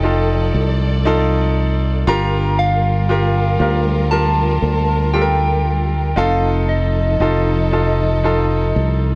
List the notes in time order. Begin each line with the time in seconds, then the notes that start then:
Already playing: F1 F3 D#4 F4 A4 G5
0.03 D#4 F4 A4 D5
0.54 C2
1.05 D#4 F4 A4
2.07 G1 G2 G3 F4 G4 A#4 A#5
2.59 F5
3.09 F4 G4 A#4
3.59 D2 F4 G4 A#4
4.11 F4 G4 A#4 A5
4.62 D2
5.14 F4 G4 A4 G5
5.22 A#4
6.16 F1 F3 D#4 F4 A4 F5
6.69 D#5
7.20 F1 D#4 F4 A4
7.72 D#4 F4 A4
8.24 D#4 F4 A4
8.76 C2